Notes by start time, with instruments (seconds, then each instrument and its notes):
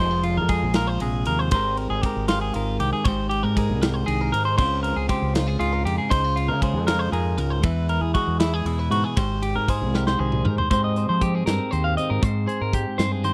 Already playing: clean electric guitar F3 G#3 G#4 C5
0.00 fingered electric bass F1, clean electric guitar D#4
0.11 clean electric guitar F4
0.23 clean electric guitar F4, ride
0.37 fingered electric bass F2, clean electric guitar A#4
0.48 clean electric guitar G#3 G#4, kick, ride
0.63 fingered electric bass A#1
0.74 clean electric guitar F4 A#4, snare, ride
0.87 clean electric guitar C5
1.00 fingered electric bass A#1, clean electric guitar C3 G#4, ride
1.25 fingered electric bass D#2, clean electric guitar A#4, ride
1.39 clean electric guitar C5
1.51 fingered electric bass G#1, clean electric guitar G#2 G#3 C4 C5, kick, ride
1.55 clean electric guitar G4 A#4
1.77 clean electric guitar A#4, ride
1.90 fingered electric bass G#1, clean electric guitar G#4
2.02 clean electric guitar G#3 G4, kick, ride
2.06 clean electric guitar A#4
2.16 fingered electric bass G#1
2.28 clean electric guitar F4 G4, snare, ride
2.41 clean electric guitar G#4
2.54 fingered electric bass G#1, clean electric guitar D#3 F4 A#4, ride
2.80 fingered electric bass C2, clean electric guitar G4, ride
2.93 clean electric guitar G#4
3.04 fingered electric bass G#1, clean electric guitar G#2 G4 C5, kick, ride
3.29 clean electric guitar G4, ride
3.43 fingered electric bass G#2, clean electric guitar A#4
3.56 clean electric guitar G#3 G#4 A#4, kick, ride
3.69 fingered electric bass C2
3.81 clean electric guitar G4 A#4, snare, ride
3.94 clean electric guitar C5
4.06 fingered electric bass C2, clean electric guitar D#3 G#4, ride
4.21 clean electric guitar A#4
4.32 fingered electric bass G#2, clean electric guitar A#4, ride
4.45 clean electric guitar C5
4.58 fingered electric bass C#2, clean electric guitar C#3 G#3 C4 F4 C5, kick, crash
4.83 clean electric guitar A#4, ride
4.96 fingered electric bass C#2, clean electric guitar G#4
5.09 clean electric guitar G#3 G4 C5, kick, ride
5.22 fingered electric bass C#2
5.34 clean electric guitar D#4 F4, snare, ride
5.47 clean electric guitar F4 G#4
5.58 fingered electric bass C#2, clean electric guitar G#2 F4 G#4, ride
5.73 clean electric guitar A#4
5.85 fingered electric bass F2, clean electric guitar G4, ride
5.98 clean electric guitar G#4
6.09 fingered electric bass C#2, clean electric guitar C#3 D#4 C5, kick, ride
6.24 clean electric guitar F4
6.36 clean electric guitar F4, ride
6.48 fingered electric bass C#3, clean electric guitar A#4
6.61 clean electric guitar G#3 G#4 C5, kick, ride
6.74 fingered electric bass F2
6.87 clean electric guitar F4 A#4, snare, ride
6.99 clean electric guitar C5
7.12 fingered electric bass F2, clean electric guitar G#2 G#4 A#4, ride
7.37 fingered electric bass C#2, clean electric guitar A#4, ride
7.50 clean electric guitar C5
7.63 fingered electric bass E2, clean electric guitar E3 E4 B4, kick, ride
7.89 clean electric guitar A#4, ride
8.01 fingered electric bass E2, clean electric guitar G#4
8.14 clean electric guitar G#3 F#4 G#4, kick, ride
8.27 fingered electric bass E2
8.40 clean electric guitar E4, snare, ride
8.54 clean electric guitar G#4
8.65 fingered electric bass E2, clean electric guitar B2 E4 G#4, ride
8.79 clean electric guitar B4
8.90 fingered electric bass G#2, clean electric guitar F#4, ride
9.04 clean electric guitar G#4
9.17 fingered electric bass G#1, clean electric guitar G#2 G4 C5, kick, ride
9.42 clean electric guitar G4, ride
9.56 fingered electric bass G#2, clean electric guitar A#4
9.68 clean electric guitar G#3 G#4 C5, kick, ride
9.82 fingered electric bass C2
9.94 clean electric guitar G4 A#4, snare
10.07 clean electric guitar C5, snare
10.19 fingered electric bass C2, clean electric guitar D#3 G#4 C5
10.32 mid tom
10.45 fingered electric bass G#2, clean electric guitar A#4, mid tom
10.58 clean electric guitar C5, floor tom
10.71 clean electric guitar G#2 G#3 C4 G4 C5, fingered electric bass G#2, kick, closed hi-hat
10.84 clean electric guitar D#5
10.96 clean electric guitar C5, closed hi-hat
11.09 fingered electric bass F3, clean electric guitar C5
11.21 clean electric guitar G#3 G4, kick, closed hi-hat
11.35 clean electric guitar G#4
11.46 fingered electric bass G2, clean electric guitar C4 A#4, snare, closed hi-hat
11.71 fingered electric bass D#2, clean electric guitar D#3 G4 C5, closed hi-hat
11.84 clean electric guitar F5
11.97 clean electric guitar C4 D#5, closed hi-hat
12.10 fingered electric bass G#2, clean electric guitar A#4
12.22 clean electric guitar G#2 C5, fingered electric bass G#2, kick, closed hi-hat
12.47 clean electric guitar G#4 C5, closed hi-hat
12.61 fingered electric bass G#2, clean electric guitar A#4
12.73 clean electric guitar G4, kick, closed hi-hat
12.98 fingered electric bass G2, clean electric guitar C4 C5, snare, closed hi-hat
13.12 clean electric guitar G#4
13.24 clean electric guitar D#3 G4 C5, closed hi-hat